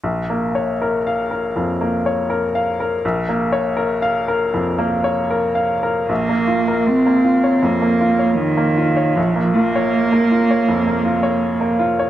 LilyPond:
<<
  \new Staff \with { instrumentName = "Upright piano" } { \time 4/4 \key bes \minor \tempo 4 = 79 \tuplet 3/2 { bes,,8 bes8 des''8 bes'8 f''8 bes'8 f,8 bes8 des''8 bes'8 f''8 bes'8 } | \tuplet 3/2 { bes,,8 bes8 des''8 bes'8 f''8 bes'8 f,8 bes8 des''8 bes'8 f''8 bes'8 } | bes,,16 bes16 f'16 bes'8 bes16 f'16 des''16 f,16 bes16 f'16 des''8 bes16 f'16 des''16 | bes,,16 bes16 f'16 des''8 bes16 f'16 des''16 f,16 bes16 f'16 des''8 bes16 f'16 des''16 | }
  \new Staff \with { instrumentName = "Cello" } { \time 4/4 \key bes \minor r1 | r1 | bes4 c'4 bes4 ees4 | f8 bes2. r8 | }
>>